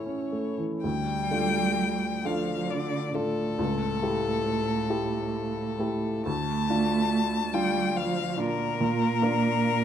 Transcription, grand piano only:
0.00 0.79 A2 soft
0.00 0.32 A3 soft
0.00 0.06 C#4 soft
0.00 0.86 E4 soft
0.00 0.86 A4 soft
0.06 0.48 C#4 soft
0.32 0.73 A3 soft
0.58 0.83 E3 soft
0.84 1.30 D2 soft
1.31 2.21 A3 soft
1.31 2.21 D4 soft
1.31 2.21 F4 soft
2.25 3.10 A3 soft
2.25 3.10 D4 soft
2.25 3.10 F4 soft
3.15 3.55 A3 soft
3.15 3.55 D4 soft
3.15 3.55 F4 soft
3.59 4.02 C#2 soft
4.02 4.85 A3 soft
4.02 4.85 E4 soft
4.02 4.86 G4 soft
4.90 5.75 A3 soft
4.90 5.76 E4 soft
4.90 5.76 G4 soft
5.79 6.23 A3 soft
5.79 6.23 E4 soft
5.79 6.23 G4 soft
6.26 6.69 D2 soft
6.70 7.50 D4 soft
6.70 7.50 F4 soft
7.54 8.35 D4 soft
7.54 8.35 F4 soft
8.37 8.76 D4 soft
8.37 8.76 F4 soft
8.80 9.21 A#2 medium
9.22 9.84 D4 soft
9.22 9.84 F4 soft
9.22 9.84 A#4 soft

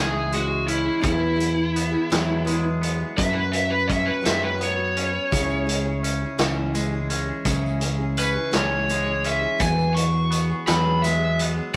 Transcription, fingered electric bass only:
0.00 0.88 C#2 medium
1.04 1.95 E2 medium
2.12 3.02 E2 medium
3.18 4.09 F#2 loud
4.27 5.17 F#2 medium
5.32 6.23 C#2 loud
6.39 7.30 C#2 medium
7.45 8.36 C#2 loud
8.54 9.44 C#2 medium
9.61 10.51 E2 loud
10.68 11.59 E2 medium

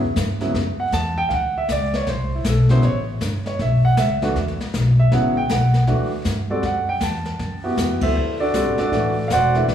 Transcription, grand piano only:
0.41 0.53 C#3 medium
0.41 0.53 F#3 medium
0.41 0.54 B3 soft
0.41 0.53 E4 medium
0.80 0.93 F#5 medium
0.94 1.17 A5 loud
1.18 1.31 G5 medium
1.29 1.32 F5 soft
1.34 1.56 F#5 medium
1.58 1.70 E5 medium
1.72 1.94 D5 medium
1.96 2.08 C#5 medium
2.10 2.32 C5 medium
2.35 2.47 E4 soft
2.48 2.70 A4 medium
2.70 2.82 C#3 medium
2.70 2.82 F#3 medium
2.70 2.82 B3 medium
2.70 2.83 E4 medium
2.70 2.84 C5 medium
2.85 2.99 C#5 medium
3.47 3.60 C#5 medium
3.62 3.84 E5 medium
3.85 3.98 F#5 medium
3.99 4.57 E5 medium
4.22 4.35 E3 medium
4.22 4.35 A3 medium
4.22 4.35 D4 medium
4.22 4.35 F#4 medium
4.99 5.12 E5 medium
5.12 5.34 C#3 medium
5.12 5.34 F#3 medium
5.12 5.34 B3 medium
5.12 5.35 E4 medium
5.12 5.36 F#5 medium
5.37 5.50 G5 medium
5.51 6.09 F#5 medium
5.88 6.10 E3 medium
5.88 6.10 A3 soft
5.88 6.10 D4 medium
5.88 6.10 F#4 medium
6.50 6.63 G3 medium
6.50 6.63 C4 medium
6.50 6.63 F#4 soft
6.50 6.63 A4 medium
6.50 6.64 D5 medium
6.66 6.89 F#5 medium
6.89 7.02 G5 medium
7.03 7.61 A5 medium
7.64 8.13 B3 medium
7.64 8.01 E4 soft
7.64 8.13 F#4 medium
7.64 8.14 G4 medium
8.02 8.38 E4 medium
8.02 8.39 A4 medium
8.02 8.38 C5 medium
8.02 8.38 E5 medium
8.40 8.76 D4 medium
8.40 8.54 F#4 medium
8.40 8.53 A4 medium
8.40 8.76 D5 medium
8.54 8.77 G3 medium
8.54 8.76 C4 medium
8.54 8.77 F#4 medium
8.54 8.77 A4 medium
8.79 8.91 D4 medium
8.79 8.91 F#4 medium
8.79 9.28 A4 medium
8.79 9.27 D5 medium
8.92 9.14 E3 medium
8.92 9.14 A3 medium
8.92 9.14 D4 soft
8.92 9.14 F#4 medium
9.28 9.31 F5 medium
9.32 9.56 F#4 medium
9.32 9.55 C5 medium
9.32 9.56 D5 medium
9.32 9.55 F#5 loud
9.56 9.68 E3 medium
9.56 9.68 A3 medium
9.56 9.68 D4 soft
9.56 9.68 E4 medium

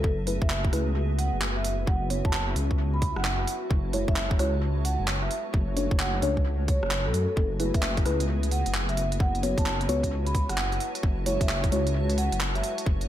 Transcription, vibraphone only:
0.41 0.51 E5 medium
1.18 1.34 F#5 medium
1.56 1.66 E5 medium
1.88 2.03 F#5 medium
2.25 2.35 A5 medium
2.94 3.04 B5 medium
3.17 3.54 F#5 medium
4.08 4.18 E5 medium
4.85 5.00 F#5 medium
5.22 5.32 E5 medium
5.99 6.15 F#5 medium
6.68 7.03 C#5 medium
7.06 7.13 A4 medium
7.14 7.23 A4 medium
7.28 7.34 A4 medium
7.75 7.84 E5 medium
8.52 8.67 F#5 medium
8.89 8.99 E5 medium
9.20 9.36 F#5 medium
9.58 9.68 A5 medium
10.26 10.36 B5 medium
10.49 10.86 F#5 medium
11.41 11.51 E5 medium
12.18 12.33 F#5 loud
12.56 12.65 E5 medium

